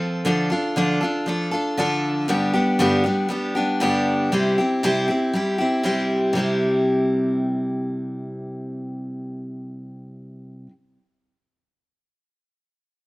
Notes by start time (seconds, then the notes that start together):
Already playing: F3 C4 F4 A4
0.25 D3 F3 D4 F4 A4
0.50 D4 F4 A4
0.76 D3 F3 D4 F4 A4
1.01 D4 F4 A4
1.26 F3 D4 F4 A4
1.51 D4 F4 A4
1.77 D3 F3 D4 F4 A4
2.28 G2 D3 G3 B3 D4 G4
2.53 G3 B3 D4 G4
2.79 G2 D3 G3 B3 D4 G4
3.04 G3 B3 D4 G4
3.29 G3 B3 D4 G4
3.55 G3 B3 D4 G4
3.80 G2 D3 G3 B3 D4 G4
4.32 C3 G3 C4 E4 G4
4.58 C4 E4 G4
4.83 C3 G3 C4 E4 G4
5.08 C4 E4 G4
5.33 G3 C4 E4 G4
5.58 C4 E4 G4
5.83 C3 G3 C4 E4 G4
6.33 C3 G3 C4
6.38 E4 G4